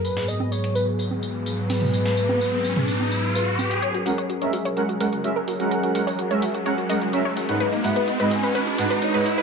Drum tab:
HH |-----x--------o-|---------------x|xxoxxxoxxxoxx-ox|xxooxxoxxxoxx-ox|
TB |x-x-x-x-x-x-x---|x-x-x-x-x-x-x-x-|----------------|----------------|
SD |-o--------------|-o--------------|----------------|----------------|
T2 |---------------o|-------o--------|----------------|----------------|
CG |---o-----o----o-|---o-----o----o-|----------------|----------------|

HH |xxoxxxoxxxoxx-ox|
TB |----------------|
SD |----------------|
T2 |----------------|
CG |----------------|